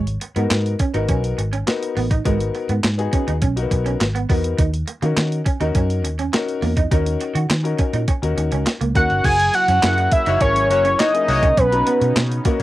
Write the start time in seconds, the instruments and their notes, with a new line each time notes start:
Already playing: fingered electric bass G#1
0.07 closed hi-hat
0.21 muted clean electric guitar stroke, closed hi-hat
0.36 fingered electric bass G#2, grand piano B3 D#4 F#4 A#4, clean electric guitar B3, closed hi-hat
0.51 fingered electric bass G#2, muted clean electric guitar stroke, snare, clap, closed hi-hat
0.66 closed hi-hat
0.80 clean electric guitar C#4, kick, closed hi-hat
0.94 fingered electric bass G#1, grand piano B3 D#4 F#4 A#4, clean electric guitar D#4, closed hi-hat
1.09 fingered electric bass B1, clean electric guitar C#4, kick, closed hi-hat
1.24 closed hi-hat
1.38 fingered electric bass G#1, muted clean electric guitar stroke, closed hi-hat
1.53 clean electric guitar C#4, closed hi-hat
1.67 grand piano B3 D#4 F#4 A#4, muted clean electric guitar stroke, snare, clap, closed hi-hat
1.83 closed hi-hat
1.97 fingered electric bass A1, clean electric guitar B3, open hi-hat
2.11 clean electric guitar D#4, kick, closed hi-hat
2.25 fingered electric bass G#1, clean electric guitar G#3, grand piano B3 D#4 F#4 A#4, kick, closed hi-hat
2.40 closed hi-hat
2.55 muted clean electric guitar stroke, closed hi-hat
2.69 fingered electric bass G#2, clean electric guitar B3, closed hi-hat
2.84 fingered electric bass G#2, muted clean electric guitar stroke, snare, clap, closed hi-hat
2.98 grand piano B3 D#4 F#4 G#4, closed hi-hat
3.13 clean electric guitar C#4, kick, closed hi-hat
3.28 fingered electric bass D#2, clean electric guitar D#4, closed hi-hat
3.42 fingered electric bass B1, clean electric guitar C#4, kick, closed hi-hat
3.56 grand piano A#3 D#4 F#4 A#4, closed hi-hat
3.62 grand piano B3
3.71 fingered electric bass B1, muted clean electric guitar stroke, kick, closed hi-hat
3.86 clean electric guitar C#4, closed hi-hat
4.00 fingered electric bass G#1, muted clean electric guitar stroke, snare, clap, closed hi-hat
4.15 clean electric guitar B3, closed hi-hat
4.29 fingered electric bass E2, clean electric guitar B3, grand piano B3 D#4 F#4 A#4, kick, open hi-hat
4.44 closed hi-hat
4.58 fingered electric bass D#2, clean electric guitar D#4, kick, closed hi-hat
4.74 closed hi-hat
4.88 muted clean electric guitar stroke, closed hi-hat
5.02 fingered electric bass D#3, clean electric guitar A#3, grand piano C#4 D#4 F#4 A#4, closed hi-hat
5.16 fingered electric bass D#3, muted clean electric guitar stroke, snare, clap, closed hi-hat
5.32 closed hi-hat
5.45 clean electric guitar C#4, kick, closed hi-hat
5.60 fingered electric bass D#2, grand piano C#4 D#4 F#4 A#4, clean electric guitar D#4, closed hi-hat
5.75 fingered electric bass F#2, clean electric guitar C#4, kick, closed hi-hat
5.90 closed hi-hat
6.04 fingered electric bass D#2, muted clean electric guitar stroke, closed hi-hat
6.19 clean electric guitar C#4, closed hi-hat
6.33 grand piano C#4 D#4 F#4 A#4, muted clean electric guitar stroke, snare, clap, closed hi-hat
6.48 closed hi-hat
6.62 fingered electric bass E2, clean electric guitar A#3, open hi-hat
6.77 clean electric guitar D#4, kick, closed hi-hat
6.91 fingered electric bass D#2, grand piano C#4 D#4 F#4 A#4, clean electric guitar D#4, kick, closed hi-hat
7.06 closed hi-hat
7.20 muted clean electric guitar stroke, closed hi-hat
7.35 fingered electric bass D#3, clean electric guitar F#4, closed hi-hat
7.50 fingered electric bass D#3, muted clean electric guitar stroke, snare, clap, closed hi-hat
7.63 grand piano C#4 D#4 F#4 A#4, closed hi-hat
7.78 clean electric guitar C#4, kick, closed hi-hat
7.93 fingered electric bass A#2, clean electric guitar D#4, closed hi-hat
8.08 clean electric guitar C#4, kick, closed hi-hat
8.22 fingered electric bass D#2, grand piano C#4 D#4 F#4 A#4, closed hi-hat
8.37 fingered electric bass D#2, muted clean electric guitar stroke, closed hi-hat
8.52 fingered electric bass C#2, clean electric guitar C#4, closed hi-hat
8.66 muted clean electric guitar stroke, snare, clap, closed hi-hat
8.81 fingered electric bass C#2, clean electric guitar A#3, closed hi-hat
8.95 fingered electric bass D#2, clean electric guitar A#3, grand piano C#4 D#4 F#4 A#4, analog synth lead F#5, kick, closed hi-hat
9.10 fingered electric bass G1, closed hi-hat
9.24 fingered electric bass F#1, analog synth pad C#3 F#3 A#3 E4, clean electric guitar F#4, analog synth lead G#5, kick, closed hi-hat, crash
9.40 closed hi-hat
9.54 analog synth lead F#5, muted clean electric guitar stroke, closed hi-hat
9.68 fingered electric bass F#2, clean electric guitar C#4, closed hi-hat
9.82 fingered electric bass F#2, grand piano C#4 E4 G#4 A#4, clean electric guitar E4, snare, clap, closed hi-hat
9.98 muted clean electric guitar stroke, closed hi-hat
10.11 analog synth lead E5, kick, closed hi-hat
10.26 fingered electric bass F#1, horn section A#3 F#4 C#5, clean electric guitar D#4, closed hi-hat
10.41 fingered electric bass G#1, grand piano C#4 E4 G#4 A#4, clean electric guitar C#4, analog synth lead C#5, kick, closed hi-hat
10.56 closed hi-hat
10.70 fingered electric bass F#1, horn section A#3 F#4 C#5, analog synth lead C#5, muted clean electric guitar stroke, closed hi-hat
10.85 clean electric guitar C#4, closed hi-hat
10.99 horn section A#3 F#4 C#5, clean electric guitar D#4, analog synth lead D#5, snare, clap, closed hi-hat
11.14 grand piano C#4 E4 G#4 A#4, closed hi-hat
11.28 fingered electric bass C2, horn section A#3 F#4 C#5, muted clean electric guitar stroke, open hi-hat
11.43 clean electric guitar C#4, kick, closed hi-hat
11.57 fingered electric bass B1, analog synth pad B3 C#4 D#4, clean electric guitar C#4, analog synth lead B4, kick, closed hi-hat
11.72 grand piano C#4 D#4 F#4 A#5, closed hi-hat
11.87 clean electric guitar B3, closed hi-hat
12.01 fingered electric bass B2, muted clean electric guitar stroke, closed hi-hat
12.16 fingered electric bass B2, snare, clap, closed hi-hat
12.32 closed hi-hat
12.45 clean electric guitar A#3, grand piano C#4 D#4 F#4 A#4, kick, closed hi-hat
12.59 horn section A#3 F#4 C#5